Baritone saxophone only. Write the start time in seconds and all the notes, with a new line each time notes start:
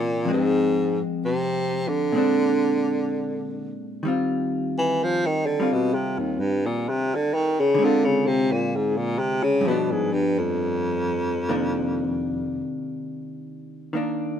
Already playing: A#2
0.33 G#2
1.25 C3
1.88 D3
4.78 E3
5.04 F3
5.26 D#3
5.46 D3
5.73 B2
5.94 C3
6.19 D#2
6.40 G2
6.66 A#2
6.89 C3
7.15 D3
7.34 D#3
7.60 C#3
7.84 D3
8.05 C#3
8.27 C3
8.52 A#2
8.76 G#2
8.97 A#2
9.19 C3
9.43 C#3
9.68 B2
9.91 G#2
10.13 G2
10.38 F2